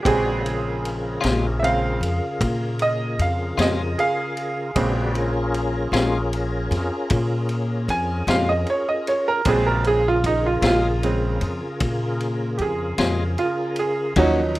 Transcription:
0.02 1.19 A#1 medium
0.02 1.18 C#3 soft
0.02 1.19 G#3 soft
0.02 1.19 C4 medium
0.02 0.43 F#4 medium
0.02 0.07 G4 medium
0.02 0.43 G#4 medium
0.02 0.43 B4 medium
0.02 0.43 D5 medium
0.02 kick loud
0.06 0.82 G#4 medium
0.06 ride medium
0.44 4.71 C#3 medium
0.44 4.71 F4 medium
0.44 4.71 G#4 medium
0.44 4.71 A#4 medium
0.44 ride medium
0.85 ride medium
1.21 1.98 A#1 medium
1.21 1.46 A#2 medium
1.21 1.46 G#3 medium
1.21 1.46 C#4 medium
1.21 1.45 F4 medium
1.21 ride medium
1.25 snare loud
1.60 1.97 C#3 soft
1.60 1.98 G#3 soft
1.60 1.97 C4 soft
1.60 1.64 E5 medium
1.64 2.77 F5 medium
1.64 ride medium
2.01 2.19 F2 medium
2.01 ride medium
2.41 3.15 A#2 loud
2.41 kick loud
2.41 ride medium
2.79 3.19 D#5 medium
2.79 ride medium
3.19 3.55 F2 medium
3.19 3.58 F5 medium
3.19 ride medium
3.58 3.94 F2 loud
3.58 3.82 A#2 medium
3.58 3.82 G#3 medium
3.58 3.82 C#4 medium
3.58 3.81 F4 medium
3.58 3.97 D#5 medium
3.58 snare loud
3.58 ride medium
3.98 6.29 G#4 medium
3.98 6.30 F5 medium
3.98 ride medium
4.37 ride medium
4.75 5.89 A#1 loud
4.75 5.27 C#3 medium
4.75 5.28 G#3 soft
4.75 5.28 C4 medium
4.75 5.15 F#4 medium
4.75 5.13 G#4 medium
4.75 5.15 B4 medium
4.75 5.15 D5 medium
4.75 kick loud
4.75 ride medium
5.14 9.41 C#4 medium
5.14 9.42 F4 medium
5.14 9.42 G#4 medium
5.14 9.42 A#4 medium
5.14 ride medium
5.54 ride medium
5.92 6.67 A#1 medium
5.92 6.18 A#2 medium
5.92 6.17 G#3 medium
5.92 6.17 C#4 medium
5.92 6.16 F4 medium
5.92 snare loud
5.92 ride medium
6.33 ride medium
6.71 6.89 F2 loud
6.71 snare soft
6.71 ride medium
7.10 7.85 A#2 loud
7.10 kick loud
7.10 ride medium
7.49 ride medium
7.88 8.25 F2 medium
7.88 8.28 G#5 medium
7.88 ride medium
8.27 8.64 F2 loud
8.27 8.53 A#2 medium
8.27 8.52 G#3 medium
8.27 8.52 C#4 medium
8.27 8.52 F4 medium
8.27 8.47 F5 medium
8.27 snare loud
8.27 ride medium
8.49 8.67 D#5 medium
8.66 8.87 C#5 medium
8.66 ride medium
8.89 9.06 D#5 medium
9.07 9.26 C#5 medium
9.07 ride medium
9.28 9.45 A#4 medium
9.45 10.60 A#1 loud
9.45 9.99 C#3 soft
9.45 9.99 G#3 soft
9.45 9.99 C4 medium
9.45 9.86 F#4 medium
9.45 9.66 G#4 medium
9.45 9.85 B4 medium
9.45 9.86 D5 medium
9.45 9.85 A5 medium
9.45 kick loud
9.45 ride loud
9.66 9.84 A#4 medium
9.84 14.14 C#3 medium
9.84 14.14 F4 medium
9.84 14.14 G#4 medium
9.84 10.05 G#4 medium
9.84 14.13 A#4 medium
9.84 ride medium
10.08 10.25 F4 medium
10.24 10.44 D#4 medium
10.24 kick medium
10.24 ride medium
10.46 10.64 F4 medium
10.62 11.37 A#1 loud
10.62 10.88 A#2 medium
10.62 10.88 G#3 medium
10.62 10.88 C#4 medium
10.62 10.66 E4 medium
10.62 10.87 F4 medium
10.62 snare loud
10.62 ride medium
10.67 12.18 F4 medium
11.03 11.39 C#3 soft
11.03 11.39 G#3 soft
11.03 11.39 C4 soft
11.03 ride medium
11.41 11.60 F2 medium
11.41 ride medium
11.80 12.56 A#2 loud
11.80 kick loud
11.80 ride medium
12.20 ride medium
12.58 12.96 F2 medium
12.58 12.62 G4 soft
12.58 ride medium
12.62 13.37 G#4 medium
12.98 13.35 F2 medium
12.98 13.24 A#2 medium
12.98 13.23 G#3 medium
12.98 13.23 C#4 medium
12.98 13.23 F4 medium
12.98 snare loud
12.98 ride medium
13.38 13.77 F4 medium
13.38 ride medium
13.76 14.17 G#4 medium
13.76 ride medium
14.16 14.59 D#2 loud
14.16 14.40 D#3 medium
14.16 14.59 F3 soft
14.16 14.59 F#3 medium
14.16 14.41 A#3 medium
14.16 14.56 C#4 medium
14.16 14.41 C#4 medium
14.16 14.59 C#4 medium
14.16 14.56 D#4 medium
14.16 14.59 D#4 medium
14.16 14.41 F#4 medium
14.16 14.56 B4 medium
14.16 kick loud
14.16 ride medium
14.55 ride medium

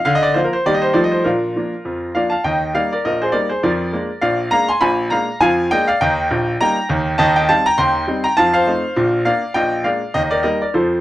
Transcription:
0.05 0.31 D3 loud
0.05 0.15 F5 loud
0.15 0.24 D#5 loud
0.23 0.36 D5 loud
0.34 0.52 F3 soft
0.34 0.52 A#3 soft
0.34 0.52 F4 medium
0.34 0.44 C5 medium
0.44 0.53 A#4 medium
0.53 0.66 C5 medium
0.66 0.91 D#3 medium
0.66 0.83 G3 medium
0.66 0.83 A#3 soft
0.66 0.83 D#4 medium
0.66 0.84 G4 medium
0.66 0.75 D5 medium
0.74 0.83 D#5 medium
0.82 0.95 C5 medium
0.93 1.20 F3 medium
0.93 1.11 G3 soft
0.93 1.12 A3 soft
0.93 1.12 D#4 medium
0.93 1.12 A4 medium
0.93 1.03 D5 medium
1.04 1.13 D#5 medium
1.12 1.25 C5 medium
1.24 1.51 A#2 medium
1.24 1.56 D4 medium
1.24 2.28 F4 medium
1.24 2.31 A#4 medium
1.56 1.72 F3 soft
1.56 1.72 A#3 soft
1.56 1.73 D4 soft
1.85 2.10 F2 medium
2.15 2.31 F3 soft
2.15 2.32 A#3 soft
2.15 2.32 D4 soft
2.15 2.31 D5 medium
2.15 2.30 F5 medium
2.30 2.43 F5 medium
2.30 2.43 A5 medium
2.44 2.70 D#2 medium
2.44 2.70 D#3 medium
2.44 2.73 D#5 medium
2.44 2.74 G5 medium
2.74 2.91 G3 soft
2.74 2.91 A#3 soft
2.74 2.91 D#4 soft
2.74 2.91 D5 medium
2.74 2.92 F5 medium
2.93 3.04 A#4 medium
2.93 3.04 D5 medium
3.05 3.30 A#1 medium
3.05 3.30 A#2 medium
3.05 3.21 A#4 medium
3.05 3.22 D#5 medium
3.22 3.33 G#4 medium
3.22 3.34 C5 medium
3.32 3.49 G3 soft
3.32 3.50 A#3 soft
3.32 3.50 D#4 medium
3.32 3.49 A#4 medium
3.32 3.50 D5 medium
3.49 3.62 G#4 medium
3.49 3.62 C5 medium
3.63 3.88 F2 medium
3.63 3.89 F3 medium
3.63 4.19 A#4 medium
3.63 4.21 D5 medium
3.93 4.09 G#3 medium
3.93 4.09 A#3 medium
3.93 4.09 D4 medium
4.21 4.47 A#1 medium
4.21 4.47 A#2 medium
4.21 4.50 D5 medium
4.21 4.51 F5 medium
4.51 4.68 G#3 soft
4.51 4.68 A#3 medium
4.51 4.69 D4 medium
4.51 4.68 F5 medium
4.51 4.69 A#5 loud
4.68 4.80 G#5 medium
4.68 4.81 C6 loud
4.81 5.07 A#1 medium
4.81 5.07 A#2 medium
4.81 5.09 G#5 medium
4.81 5.11 B5 loud
5.10 5.28 G#3 medium
5.10 5.28 A#3 medium
5.10 5.28 D4 medium
5.10 5.39 F5 medium
5.10 5.41 A#5 medium
5.41 5.66 F2 medium
5.41 5.66 F3 medium
5.41 5.69 F5 medium
5.41 5.71 G#5 loud
5.71 5.87 G#3 medium
5.71 5.88 A#3 medium
5.71 5.88 D4 medium
5.71 5.87 D#5 medium
5.71 5.88 G5 loud
5.88 6.00 D5 medium
5.88 6.00 F5 loud
6.01 6.25 D#2 medium
6.01 6.25 D#3 medium
6.01 6.57 D#5 medium
6.01 6.60 G5 loud
6.31 6.54 A#1 medium
6.31 6.54 A#2 medium
6.61 6.77 G3 medium
6.61 6.77 A#3 medium
6.61 6.77 D#4 medium
6.61 6.89 G5 medium
6.61 6.90 A#5 loud
6.89 7.13 D#2 medium
6.89 7.13 D#3 medium
7.18 7.44 D#2 medium
7.18 7.44 D#3 loud
7.18 7.35 D#5 loud
7.18 7.36 A5 loud
7.36 7.48 D#5 medium
7.36 7.49 G5 loud
7.49 7.65 G3 medium
7.49 7.66 C4 medium
7.49 7.66 D#4 medium
7.49 7.65 F5 medium
7.49 7.66 A5 loud
7.66 7.77 G5 medium
7.66 7.78 A#5 loud
7.78 8.04 D#2 medium
7.78 8.04 D#3 medium
7.78 8.22 G5 medium
7.78 8.25 C6 loud
8.08 8.24 G3 medium
8.08 8.25 C4 medium
8.08 8.25 D#4 medium
8.24 8.37 G5 medium
8.24 8.37 A#5 loud
8.37 8.63 F2 medium
8.37 8.63 F3 medium
8.37 8.52 F5 medium
8.37 8.54 A5 loud
8.53 9.22 C5 medium
8.53 9.24 F5 loud
8.67 8.83 A3 soft
8.67 8.84 C4 soft
8.67 8.84 D#4 medium
8.96 9.22 A#1 medium
8.96 9.22 A#2 loud
9.25 9.42 A#3 medium
9.25 9.43 D4 medium
9.25 9.54 D5 medium
9.25 9.56 F5 loud
9.54 9.81 A#1 medium
9.54 9.81 A#2 medium
9.54 9.84 D#5 medium
9.54 9.85 G5 loud
9.84 10.01 G#3 soft
9.84 10.01 A#3 soft
9.84 10.01 D4 medium
9.84 10.13 D5 medium
9.84 10.15 F5 medium
10.14 10.40 D#2 medium
10.14 10.40 D#3 medium
10.14 10.22 D#5 loud
10.23 10.32 D#5 medium
10.31 10.43 A#4 medium
10.31 10.44 D5 medium
10.43 10.60 G3 soft
10.43 10.61 A#3 soft
10.43 10.61 D#4 soft
10.43 10.61 A#4 medium
10.43 10.61 D#5 medium
10.62 10.74 A#4 medium
10.62 10.74 D5 medium
10.74 11.00 F2 medium
10.74 11.00 F3 medium
10.74 11.01 A4 medium
10.74 11.01 C5 medium

